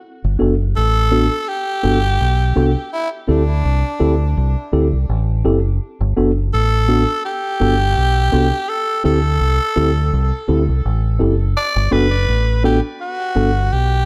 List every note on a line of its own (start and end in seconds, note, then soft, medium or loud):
0.24 0.39 G1 medium
0.39 0.73 F#1 medium
0.39 0.53 B3 medium
0.39 0.53 D4 medium
0.39 0.53 F#4 medium
0.39 0.54 A4 loud
0.76 1.28 A1 medium
0.76 1.50 A4 loud
1.11 1.26 B3 loud
1.11 1.26 D4 medium
1.11 1.26 F#4 medium
1.11 1.26 A4 loud
1.48 2.92 G4 loud
1.83 2.17 G1 medium
1.83 1.97 B3 medium
1.83 1.98 D4 medium
1.83 1.98 F#4 medium
1.83 1.98 A4 loud
2.21 2.53 B1 medium
2.56 2.74 C2 medium
2.56 2.70 B3 medium
2.56 2.70 D4 medium
2.56 2.70 F#4 medium
2.56 2.70 A4 loud
2.93 3.09 E4 medium
3.28 3.62 D2 medium
3.28 3.42 C4 medium
3.28 4.69 D4 medium
3.28 3.42 E4 medium
3.28 3.42 G4 medium
3.28 3.42 A4 loud
3.65 3.82 C2 medium
4.00 4.34 D2 medium
4.00 4.14 C4 loud
4.00 4.14 E4 medium
4.00 4.14 G4 medium
4.00 4.14 A4 loud
4.37 4.55 C2 loud
4.72 4.91 D2 medium
4.72 4.86 C4 medium
4.72 4.86 E4 medium
4.72 4.87 G4 medium
4.72 4.86 A4 loud
4.93 5.07 C2 medium
5.09 5.42 A1 medium
5.45 5.78 F#1 loud
5.45 5.58 C4 medium
5.45 5.58 E4 medium
5.45 5.58 G4 medium
5.45 5.59 A4 loud
6.01 6.15 G1 medium
6.17 6.50 F#1 medium
6.17 6.30 B3 loud
6.17 6.30 D4 medium
6.17 6.31 F#4 medium
6.17 6.31 A4 loud
6.54 7.04 A1 medium
6.54 7.21 A4 loud
6.88 7.02 B3 loud
6.88 7.02 D4 medium
6.88 7.02 F#4 medium
6.88 7.03 A4 loud
7.25 8.70 G4 loud
7.60 7.94 G1 loud
7.60 7.74 B3 medium
7.60 7.74 D4 medium
7.60 7.74 F#4 medium
7.60 7.74 A4 loud
7.97 8.30 B1 medium
8.32 8.51 C2 loud
8.32 8.46 B3 loud
8.32 8.46 D4 medium
8.32 8.46 F#4 medium
8.32 8.46 A4 loud
8.69 9.04 A4 loud
9.04 9.38 D2 medium
9.04 9.18 C4 loud
9.04 9.18 E4 medium
9.04 9.18 G4 medium
9.04 9.18 A4 loud
9.04 10.45 A4 loud
9.41 9.58 C2 medium
9.76 10.10 D2 medium
9.76 9.90 C4 loud
9.76 9.90 E4 medium
9.76 9.90 G4 medium
9.76 9.90 A4 loud
10.13 10.31 C2 loud
10.48 10.66 D2 medium
10.48 10.62 C4 medium
10.48 10.62 E4 medium
10.48 10.62 G4 medium
10.48 10.62 A4 loud
10.69 10.83 C2 medium
10.85 11.18 A1 medium
11.19 11.54 F#1 medium
11.19 11.34 C4 medium
11.19 11.34 E4 medium
11.19 11.34 G4 medium
11.19 11.34 A4 medium
11.57 11.94 D5 loud
11.76 11.91 G1 loud
11.91 12.25 F#1 medium
11.91 12.06 B3 loud
11.91 12.06 D4 medium
11.91 12.06 F#4 medium
11.91 12.06 A4 loud
11.91 12.64 B4 loud
12.28 12.80 A1 medium
12.64 12.78 B3 loud
12.64 12.78 D4 medium
12.64 12.78 F#4 medium
12.64 12.81 G4 medium
12.64 12.78 A4 loud
13.01 13.74 F#4 medium
13.35 13.69 G1 loud
13.35 13.50 B3 medium
13.35 13.50 D4 medium
13.35 13.50 F#4 medium
13.35 13.50 A4 loud
13.73 14.05 B1 medium
13.73 14.05 G4 medium